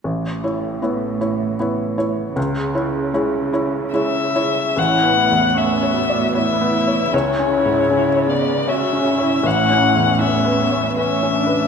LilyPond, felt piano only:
\new Staff \with { instrumentName = "Felt piano" } { \time 3/4 \key a \major \tempo 4 = 77 a,,8 <e' cis''>8 <b e' cis''>8 <e' cis''>8 <b e' cis''>8 <e' cis''>8 | cis,8 <e' cis''>8 <gis e' cis''>8 <e' cis''>8 <gis e' cis''>8 <e' cis''>8 | \tuplet 3/2 { a,,8 b8 e,8 b8 cis''8 d''8 cis''8 b8 cis''8 } | \tuplet 3/2 { cis,8 cis'8 gis,8 cis'8 cis''8 d''8 cis''8 cis'8 cis''8 } |
\tuplet 3/2 { a,,8 cis'8 e,8 cis'8 b'8 cis''8 b'8 cis'8 b'8 } | }